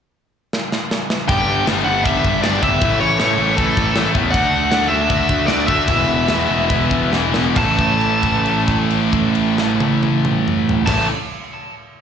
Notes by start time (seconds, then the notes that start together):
0.53 snare
0.72 snare
0.91 snare
1.10 snare
1.27 G1 G2 D3 G3 B3 D4 G4 G5, kick, crash
1.48 G1
1.66 G1 G2 D3 G3 B3 D4 G4, snare, crash
1.85 G1 G2 D3 G3 B3 D4 G4 F#5
2.04 G1 G2 D3 G3 B3 D4 G4 E5, kick, crash
2.24 G1, kick
2.42 G1 G2 D3 G3 B3 D4 G4 D5, snare, crash
2.62 G1 G2 D3 G3 B3 D4 G4 E5, kick
2.80 A1 A2 E3 A3 C#4 E4, kick, crash
3.00 A1 C#5
3.19 A2 E3 A3 C#4 E4 C#5, snare, crash
3.38 A1 A2 E3 A3 C#4 E4
3.57 A1 A2 E3 A3 C#4 E4 A4, kick, crash
3.77 A1, kick
3.96 A1 A2 E3 A3 C#4 E4, snare, crash
4.14 E2 A2 E3 A3 C#4 E4, kick
4.31 D2 D3 A3 D4 F#4 F#5, kick, crash
4.53 D2
4.72 D2 D3 A3 D4 F#4, snare, crash
4.88 D2 D3 A3 D4 F#4 E5
5.09 D2 D3 A3 D4 F#4, kick, crash
5.29 D2, kick
5.47 D2 D3 A3 D4 F#4 D5, snare, crash
5.67 D2 D3 A3 D4 F#4 E5, kick
5.87 E1 E2 B2 E3 G#3 B3 E4, kick, crash
6.07 E1
6.28 E2 B2 E3 G#3 B3 E4, snare, crash
6.48 E1 E2 B2 E3 G#3 B3 E4
6.68 E1 E2 B2 E3 G#3 B3 E4, kick, crash
6.91 E1, kick
7.11 E1 E2 B2 E3 G#3 B3 E4, snare
7.33 E1 E2 B2 E3 G#3 B3 E4, snare
7.55 A1 A2 E3 A3 C#4 A5, kick, crash
7.59 E4
7.79 kick, crash
8.01 crash
8.22 kick, crash
8.46 crash
8.68 kick, crash
8.90 crash
9.13 kick, crash
9.35 crash
9.58 snare
9.80 high tom
10.03 high tom
10.25 mid tom
10.48 mid tom
10.69 floor tom
10.85 A1 A2 E3 A3 C#4 A5, kick, snare, crash
10.89 E4